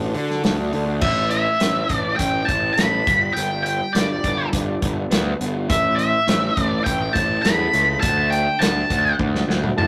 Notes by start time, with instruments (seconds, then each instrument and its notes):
Already playing: picked electric bass A1
0.00 clean electric guitar D4 F#4 A4
0.14 clean electric guitar D3 D4 F#4 A4, picked electric bass D3, open hi-hat
0.30 snare
0.42 picked electric bass D2, clean electric guitar D3 D4 F#4 A4, snare, open hi-hat
0.58 clean electric guitar D4 F#4 A4
0.72 picked electric bass D2, clean electric guitar D3 D4 F#4 A4, open hi-hat
0.87 clean electric guitar D4 F#4 A4
1.01 picked electric bass A1, clean electric guitar A2, lead electric guitar E5, kick, crash
1.30 lead electric guitar E5, closed hi-hat
1.60 picked electric bass A1, clean electric guitar C#4, snare, closed hi-hat
1.89 picked electric bass A1, clean electric guitar A3, kick, closed hi-hat
1.95 lead electric guitar D5
2.16 picked electric bass A1, clean electric guitar C#4, lead electric guitar G5, kick, closed hi-hat
2.45 picked electric bass A1, clean electric guitar E4, lead electric guitar A5, kick, closed hi-hat
2.74 clean electric guitar A4, lead electric guitar B5, closed hi-hat
2.79 picked electric bass A1, snare
3.06 picked electric bass G1, clean electric guitar G3, kick, closed hi-hat
3.33 picked electric bass G1, clean electric guitar G3, lead electric guitar G5, closed hi-hat
3.63 lead electric guitar G5, closed hi-hat
3.93 picked electric bass G1, clean electric guitar D4, lead electric guitar D5, snare, closed hi-hat
4.24 picked electric bass G1, clean electric guitar G3, kick, closed hi-hat
4.52 picked electric bass G1, clean electric guitar D4, kick, closed hi-hat
4.81 picked electric bass G1, clean electric guitar B3, kick, closed hi-hat
5.10 picked electric bass D2, clean electric guitar B4, snare, closed hi-hat
5.40 picked electric bass G1, clean electric guitar B3, closed hi-hat
5.69 picked electric bass A1, clean electric guitar A2, lead electric guitar E5, kick, closed hi-hat
5.96 lead electric guitar E5, closed hi-hat
6.27 picked electric bass A1, clean electric guitar C#4, snare, closed hi-hat
6.57 picked electric bass A1, clean electric guitar A3, kick, closed hi-hat
6.62 lead electric guitar D5
6.84 picked electric bass A1, clean electric guitar C#4, lead electric guitar G5, kick, closed hi-hat
7.13 picked electric bass A1, clean electric guitar E4, lead electric guitar A5, kick, closed hi-hat
7.42 picked electric bass E2, clean electric guitar A4, lead electric guitar B5, snare, closed hi-hat
7.73 picked electric bass C#2, clean electric guitar E4, closed hi-hat
8.00 picked electric bass D2, clean electric guitar D3, lead electric guitar A5, kick, closed hi-hat
8.30 lead electric guitar G5, closed hi-hat
8.59 picked electric bass D2, clean electric guitar D4, lead electric guitar A5, snare, closed hi-hat
8.89 picked electric bass D2, clean electric guitar D3, kick, closed hi-hat
9.19 picked electric bass D2, clean electric guitar D4, kick, high tom
9.35 snare
9.48 picked electric bass D2, clean electric guitar F#4, snare
9.64 mid tom
9.77 picked electric bass A2, clean electric guitar A4, lead electric guitar A5, mid tom